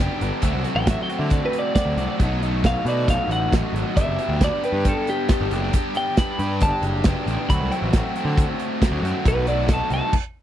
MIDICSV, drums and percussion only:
0, 0, Header, 1, 2, 480
1, 0, Start_track
1, 0, Key_signature, 1, "major"
1, 0, Tempo, 440852
1, 480, Time_signature, 4, 2, 24, 8
1, 11353, End_track
2, 0, Start_track
2, 0, Title_t, "Drums"
2, 232, Note_on_c, 9, 42, 70
2, 341, Note_off_c, 9, 42, 0
2, 456, Note_on_c, 9, 42, 95
2, 464, Note_on_c, 9, 36, 94
2, 565, Note_off_c, 9, 42, 0
2, 573, Note_off_c, 9, 36, 0
2, 701, Note_on_c, 9, 42, 74
2, 810, Note_off_c, 9, 42, 0
2, 945, Note_on_c, 9, 42, 99
2, 948, Note_on_c, 9, 36, 101
2, 949, Note_on_c, 9, 38, 114
2, 1054, Note_off_c, 9, 42, 0
2, 1057, Note_off_c, 9, 36, 0
2, 1058, Note_off_c, 9, 38, 0
2, 1194, Note_on_c, 9, 42, 63
2, 1303, Note_off_c, 9, 42, 0
2, 1418, Note_on_c, 9, 42, 82
2, 1428, Note_on_c, 9, 36, 108
2, 1526, Note_off_c, 9, 42, 0
2, 1537, Note_off_c, 9, 36, 0
2, 1667, Note_on_c, 9, 42, 77
2, 1776, Note_off_c, 9, 42, 0
2, 1910, Note_on_c, 9, 36, 109
2, 1910, Note_on_c, 9, 42, 86
2, 1914, Note_on_c, 9, 38, 109
2, 2019, Note_off_c, 9, 36, 0
2, 2019, Note_off_c, 9, 42, 0
2, 2023, Note_off_c, 9, 38, 0
2, 2152, Note_on_c, 9, 42, 64
2, 2261, Note_off_c, 9, 42, 0
2, 2391, Note_on_c, 9, 42, 80
2, 2393, Note_on_c, 9, 36, 107
2, 2500, Note_off_c, 9, 42, 0
2, 2501, Note_off_c, 9, 36, 0
2, 2643, Note_on_c, 9, 42, 63
2, 2751, Note_off_c, 9, 42, 0
2, 2875, Note_on_c, 9, 36, 114
2, 2880, Note_on_c, 9, 42, 84
2, 2884, Note_on_c, 9, 38, 110
2, 2984, Note_off_c, 9, 36, 0
2, 2989, Note_off_c, 9, 42, 0
2, 2993, Note_off_c, 9, 38, 0
2, 3117, Note_on_c, 9, 42, 69
2, 3225, Note_off_c, 9, 42, 0
2, 3355, Note_on_c, 9, 36, 111
2, 3358, Note_on_c, 9, 42, 92
2, 3464, Note_off_c, 9, 36, 0
2, 3467, Note_off_c, 9, 42, 0
2, 3604, Note_on_c, 9, 42, 78
2, 3713, Note_off_c, 9, 42, 0
2, 3838, Note_on_c, 9, 36, 110
2, 3845, Note_on_c, 9, 42, 97
2, 3849, Note_on_c, 9, 38, 116
2, 3946, Note_off_c, 9, 36, 0
2, 3953, Note_off_c, 9, 42, 0
2, 3958, Note_off_c, 9, 38, 0
2, 4092, Note_on_c, 9, 42, 69
2, 4201, Note_off_c, 9, 42, 0
2, 4319, Note_on_c, 9, 36, 110
2, 4321, Note_on_c, 9, 42, 95
2, 4428, Note_off_c, 9, 36, 0
2, 4430, Note_off_c, 9, 42, 0
2, 4559, Note_on_c, 9, 42, 73
2, 4668, Note_off_c, 9, 42, 0
2, 4801, Note_on_c, 9, 36, 112
2, 4801, Note_on_c, 9, 42, 104
2, 4805, Note_on_c, 9, 38, 122
2, 4910, Note_off_c, 9, 36, 0
2, 4910, Note_off_c, 9, 42, 0
2, 4914, Note_off_c, 9, 38, 0
2, 5047, Note_on_c, 9, 42, 65
2, 5156, Note_off_c, 9, 42, 0
2, 5279, Note_on_c, 9, 42, 95
2, 5282, Note_on_c, 9, 36, 103
2, 5388, Note_off_c, 9, 42, 0
2, 5391, Note_off_c, 9, 36, 0
2, 5522, Note_on_c, 9, 42, 72
2, 5631, Note_off_c, 9, 42, 0
2, 5755, Note_on_c, 9, 42, 85
2, 5760, Note_on_c, 9, 38, 101
2, 5764, Note_on_c, 9, 36, 117
2, 5864, Note_off_c, 9, 42, 0
2, 5869, Note_off_c, 9, 38, 0
2, 5873, Note_off_c, 9, 36, 0
2, 6001, Note_on_c, 9, 42, 72
2, 6110, Note_off_c, 9, 42, 0
2, 6241, Note_on_c, 9, 42, 93
2, 6247, Note_on_c, 9, 36, 102
2, 6350, Note_off_c, 9, 42, 0
2, 6356, Note_off_c, 9, 36, 0
2, 6476, Note_on_c, 9, 42, 63
2, 6585, Note_off_c, 9, 42, 0
2, 6718, Note_on_c, 9, 42, 86
2, 6722, Note_on_c, 9, 38, 113
2, 6724, Note_on_c, 9, 36, 112
2, 6827, Note_off_c, 9, 42, 0
2, 6831, Note_off_c, 9, 38, 0
2, 6833, Note_off_c, 9, 36, 0
2, 6962, Note_on_c, 9, 42, 64
2, 7071, Note_off_c, 9, 42, 0
2, 7192, Note_on_c, 9, 42, 95
2, 7204, Note_on_c, 9, 36, 114
2, 7300, Note_off_c, 9, 42, 0
2, 7312, Note_off_c, 9, 36, 0
2, 7433, Note_on_c, 9, 42, 75
2, 7542, Note_off_c, 9, 42, 0
2, 7663, Note_on_c, 9, 42, 94
2, 7667, Note_on_c, 9, 38, 116
2, 7679, Note_on_c, 9, 36, 115
2, 7772, Note_off_c, 9, 42, 0
2, 7776, Note_off_c, 9, 38, 0
2, 7788, Note_off_c, 9, 36, 0
2, 7922, Note_on_c, 9, 42, 64
2, 8031, Note_off_c, 9, 42, 0
2, 8163, Note_on_c, 9, 36, 108
2, 8163, Note_on_c, 9, 42, 93
2, 8272, Note_off_c, 9, 36, 0
2, 8272, Note_off_c, 9, 42, 0
2, 8405, Note_on_c, 9, 42, 77
2, 8514, Note_off_c, 9, 42, 0
2, 8634, Note_on_c, 9, 42, 102
2, 8639, Note_on_c, 9, 38, 110
2, 8641, Note_on_c, 9, 36, 117
2, 8743, Note_off_c, 9, 42, 0
2, 8748, Note_off_c, 9, 38, 0
2, 8750, Note_off_c, 9, 36, 0
2, 8880, Note_on_c, 9, 42, 69
2, 8989, Note_off_c, 9, 42, 0
2, 9119, Note_on_c, 9, 36, 123
2, 9124, Note_on_c, 9, 42, 97
2, 9227, Note_off_c, 9, 36, 0
2, 9233, Note_off_c, 9, 42, 0
2, 9358, Note_on_c, 9, 42, 80
2, 9467, Note_off_c, 9, 42, 0
2, 9600, Note_on_c, 9, 36, 103
2, 9605, Note_on_c, 9, 42, 98
2, 9609, Note_on_c, 9, 38, 102
2, 9709, Note_off_c, 9, 36, 0
2, 9714, Note_off_c, 9, 42, 0
2, 9718, Note_off_c, 9, 38, 0
2, 9852, Note_on_c, 9, 42, 75
2, 9961, Note_off_c, 9, 42, 0
2, 10076, Note_on_c, 9, 36, 107
2, 10081, Note_on_c, 9, 42, 84
2, 10185, Note_off_c, 9, 36, 0
2, 10190, Note_off_c, 9, 42, 0
2, 10309, Note_on_c, 9, 42, 69
2, 10418, Note_off_c, 9, 42, 0
2, 10544, Note_on_c, 9, 42, 87
2, 10548, Note_on_c, 9, 36, 115
2, 10549, Note_on_c, 9, 38, 116
2, 10653, Note_off_c, 9, 42, 0
2, 10657, Note_off_c, 9, 36, 0
2, 10658, Note_off_c, 9, 38, 0
2, 10781, Note_on_c, 9, 42, 71
2, 10890, Note_off_c, 9, 42, 0
2, 11029, Note_on_c, 9, 36, 103
2, 11030, Note_on_c, 9, 49, 97
2, 11138, Note_off_c, 9, 36, 0
2, 11139, Note_off_c, 9, 49, 0
2, 11353, End_track
0, 0, End_of_file